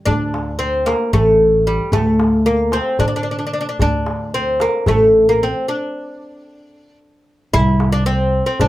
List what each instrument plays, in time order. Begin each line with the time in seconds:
0.06 upright bass D2, oud D4, darbuka dum
0.34 darbuka tek
0.59 oud C4
0.86 oud A#3, darbuka tek
1.13 upright bass A1, oud A3, darbuka dum
1.40 darbuka ka
1.67 oud G3
1.92 upright bass D2, oud A3, darbuka dum
2.20 darbuka tek
2.46 oud A#3
2.72 oud C4, darbuka tek
2.99 upright bass D3, oud D4, darbuka dum
3.08 oud D4
3.16 oud D4
3.23 oud D4, darbuka ka
3.31 oud D4
3.39 oud D4
3.47 oud D4
3.53 oud D4
3.61 oud D4
3.69 oud D4
3.79 upright bass D2, oud D4, darbuka dum
4.06 darbuka tek
4.34 oud C4
4.60 oud A#3, darbuka tek
4.86 upright bass A1, oud A3, darbuka dum
5.13 darbuka ka
5.29 oud A#3
5.43 oud C4
5.68 oud D4
7.54 upright bass C2, oud E4, darbuka dum
7.80 darbuka tek
7.92 oud D4
8.06 oud C4, darbuka ka
8.46 oud C4
8.60 upright bass C2, oud D4, darbuka dum